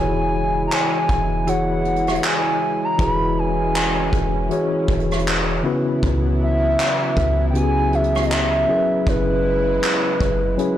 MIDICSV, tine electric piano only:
0, 0, Header, 1, 2, 480
1, 0, Start_track
1, 0, Tempo, 759494
1, 1890, Time_signature, 4, 2, 24, 8
1, 6812, End_track
2, 0, Start_track
2, 0, Title_t, "Tine electric piano"
2, 0, Program_c, 0, 4
2, 0, Note_on_c, 0, 52, 74
2, 0, Note_on_c, 0, 64, 68
2, 0, Note_on_c, 0, 66, 66
2, 0, Note_on_c, 0, 68, 66
2, 0, Note_on_c, 0, 73, 83
2, 80, Control_c, 0, 64, 127
2, 652, Note_off_c, 0, 52, 0
2, 654, Note_off_c, 0, 64, 0
2, 657, Note_off_c, 0, 66, 0
2, 660, Note_off_c, 0, 68, 0
2, 663, Note_off_c, 0, 73, 0
2, 920, Note_on_c, 0, 52, 75
2, 926, Note_on_c, 0, 64, 67
2, 932, Note_on_c, 0, 66, 67
2, 936, Note_on_c, 0, 68, 67
2, 942, Note_on_c, 0, 73, 80
2, 1612, Note_off_c, 0, 52, 0
2, 1615, Note_off_c, 0, 64, 0
2, 1617, Note_off_c, 0, 66, 0
2, 1620, Note_off_c, 0, 68, 0
2, 1623, Note_off_c, 0, 73, 0
2, 1880, Note_on_c, 0, 52, 77
2, 1885, Note_on_c, 0, 64, 69
2, 1891, Note_on_c, 0, 66, 69
2, 1896, Note_on_c, 0, 68, 70
2, 1902, Note_on_c, 0, 71, 81
2, 2572, Note_off_c, 0, 52, 0
2, 2574, Note_off_c, 0, 64, 0
2, 2577, Note_off_c, 0, 66, 0
2, 2580, Note_off_c, 0, 68, 0
2, 2582, Note_off_c, 0, 71, 0
2, 2839, Note_on_c, 0, 52, 89
2, 2844, Note_on_c, 0, 64, 81
2, 2850, Note_on_c, 0, 66, 81
2, 2855, Note_on_c, 0, 68, 80
2, 2861, Note_on_c, 0, 73, 92
2, 3531, Note_off_c, 0, 52, 0
2, 3534, Note_off_c, 0, 64, 0
2, 3536, Note_off_c, 0, 66, 0
2, 3539, Note_off_c, 0, 68, 0
2, 3542, Note_off_c, 0, 73, 0
2, 3558, Note_on_c, 0, 49, 98
2, 3562, Note_on_c, 0, 61, 92
2, 3566, Note_on_c, 0, 59, 86
2, 3570, Note_on_c, 0, 64, 86
2, 3575, Note_on_c, 0, 66, 84
2, 3578, Control_c, 0, 64, 0
2, 3579, Note_on_c, 0, 71, 104
2, 3677, Control_c, 0, 64, 127
2, 4340, Note_off_c, 0, 49, 0
2, 4342, Note_off_c, 0, 61, 0
2, 4344, Note_off_c, 0, 59, 0
2, 4346, Note_off_c, 0, 64, 0
2, 4348, Note_off_c, 0, 66, 0
2, 4350, Note_off_c, 0, 71, 0
2, 4759, Note_on_c, 0, 49, 75
2, 4764, Note_on_c, 0, 61, 72
2, 4768, Note_on_c, 0, 59, 66
2, 4772, Note_on_c, 0, 64, 71
2, 4776, Note_on_c, 0, 66, 66
2, 4781, Note_on_c, 0, 67, 69
2, 4822, Note_on_c, 0, 68, 81
2, 4823, Note_off_c, 0, 67, 0
2, 5451, Note_off_c, 0, 49, 0
2, 5454, Note_off_c, 0, 61, 0
2, 5455, Note_off_c, 0, 59, 0
2, 5458, Note_off_c, 0, 64, 0
2, 5460, Note_off_c, 0, 66, 0
2, 5480, Note_on_c, 0, 54, 83
2, 5482, Note_off_c, 0, 68, 0
2, 5485, Note_on_c, 0, 61, 74
2, 5491, Note_on_c, 0, 64, 71
2, 5496, Note_on_c, 0, 68, 70
2, 5498, Control_c, 0, 64, 0
2, 5501, Note_on_c, 0, 70, 70
2, 5542, Note_on_c, 0, 71, 91
2, 5543, Note_off_c, 0, 70, 0
2, 5588, Control_c, 0, 64, 127
2, 6261, Note_off_c, 0, 54, 0
2, 6263, Note_off_c, 0, 61, 0
2, 6266, Note_off_c, 0, 64, 0
2, 6269, Note_off_c, 0, 68, 0
2, 6292, Note_off_c, 0, 71, 0
2, 6681, Note_on_c, 0, 54, 86
2, 6686, Note_on_c, 0, 61, 83
2, 6691, Note_on_c, 0, 64, 80
2, 6696, Note_on_c, 0, 68, 81
2, 6702, Note_on_c, 0, 71, 92
2, 6812, Note_off_c, 0, 54, 0
2, 6812, Note_off_c, 0, 61, 0
2, 6812, Note_off_c, 0, 64, 0
2, 6812, Note_off_c, 0, 68, 0
2, 6812, Note_off_c, 0, 71, 0
2, 6812, End_track
0, 0, End_of_file